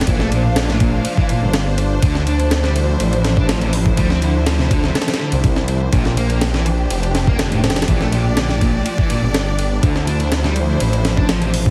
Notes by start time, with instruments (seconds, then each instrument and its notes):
Already playing: string section D4 C5
0.01 snare, ride
0.07 detuned saw bass A#1, distorted electric guitar E3, string section F5, kick, ride
0.20 distorted electric guitar A3, snare
0.32 distorted electric guitar A#2, ride
0.56 distorted electric guitar D3, snare, ride
0.69 distorted electric guitar A2, snare
0.80 distorted electric guitar A#2, kick, ride
0.93 distorted electric guitar A2
1.05 distorted electric guitar F3, ride
1.17 distorted electric guitar E3, kick
1.29 distorted electric guitar A#2, ride
1.42 detuned saw bass G1
1.54 snare, ride
1.78 ride
2.02 detuned saw bass D2, distorted electric guitar D3, string section F3 E4, kick, ride
2.15 distorted electric guitar D3, snare
2.27 distorted electric guitar D4, ride
2.39 distorted electric guitar D4, ride
2.51 snare, ride
2.64 distorted electric guitar G3, snare
2.76 ride
3.00 detuned saw bass A1, ride
3.13 ride
3.25 snare, ride
3.37 distorted electric guitar D4, kick
3.49 distorted electric guitar F3, snare, ride
3.61 distorted electric guitar C3, ride
3.73 open hi-hat
3.86 kick
3.97 detuned saw bass D2, distorted electric guitar G3, kick, ride
4.10 distorted electric guitar C4, snare
4.22 distorted electric guitar D3, ride
4.46 distorted electric guitar F3, snare, ride
4.59 distorted electric guitar C3, snare
4.71 distorted electric guitar D3, kick, ride
4.83 distorted electric guitar C3, snare
4.95 distorted electric guitar A3, snare, ride
5.02 snare, ride
5.08 distorted electric guitar G3, snare, ride
5.14 snare, ride
5.19 distorted electric guitar D3, snare
5.32 detuned saw bass C2, ride
5.44 kick, ride
5.56 snare
5.68 ride
5.93 detuned saw bass A#1, distorted electric guitar A#2, string section D4 G4, kick, ride
6.05 distorted electric guitar A#2, snare
6.17 distorted electric guitar A#3, ride
6.30 distorted electric guitar A#3, ride
6.41 snare, ride
6.54 distorted electric guitar E3, snare
6.66 ride
6.90 detuned saw bass F1, ride
7.03 ride
7.15 snare, ride
7.27 distorted electric guitar A#3, kick
7.39 distorted electric guitar D3, snare, ride
7.52 distorted electric guitar A2, ride
7.64 snare, ride
7.70 snare, ride
7.76 snare, ride
7.82 snare, ride
7.88 detuned saw bass A#1, distorted electric guitar E3, string section D5, kick, ride
8.01 distorted electric guitar A3, snare
8.12 distorted electric guitar A#2, ride
8.37 distorted electric guitar D3, snare, ride
8.49 distorted electric guitar A2, snare
8.61 distorted electric guitar A#2, kick, ride
8.74 distorted electric guitar A2
8.86 distorted electric guitar F3, ride
8.98 distorted electric guitar E3, kick
9.10 distorted electric guitar A#2, ride
9.23 detuned saw bass G1
9.34 snare, ride
9.59 ride
9.83 detuned saw bass D2, distorted electric guitar D3, string section F3 E4 C5, kick, ride
9.96 distorted electric guitar D3, snare
10.07 distorted electric guitar D4, ride
10.20 distorted electric guitar D4, ride
10.32 snare, ride
10.44 distorted electric guitar G3, snare
10.56 ride
10.80 detuned saw bass A1, ride
10.93 ride
11.05 snare, ride
11.17 distorted electric guitar D4, kick
11.29 distorted electric guitar F3, snare, ride
11.42 distorted electric guitar C3, ride
11.54 open hi-hat
11.66 kick